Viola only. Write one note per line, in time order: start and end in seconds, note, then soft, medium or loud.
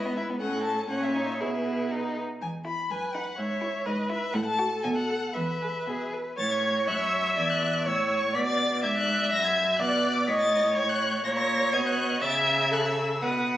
0.00 0.40 B4 medium
0.40 0.89 A4 medium
0.89 1.42 C#5 medium
1.41 2.16 G#4 medium
2.91 3.35 B4 medium
3.38 3.87 C#5 medium
3.86 4.36 B4 medium
4.35 5.35 A4 medium
5.35 6.11 B4 medium
6.38 6.89 C#5 medium
6.87 7.86 E5 medium
7.86 8.36 C#5 medium
8.35 8.83 D5 loud
8.83 9.81 E5 loud
9.79 10.27 D5 loud
10.28 10.77 D#5 loud
10.75 11.24 C#5 loud
11.25 12.23 C#5 loud
12.22 12.73 E5 loud
12.71 13.21 A4 loud
13.22 13.57 B4 medium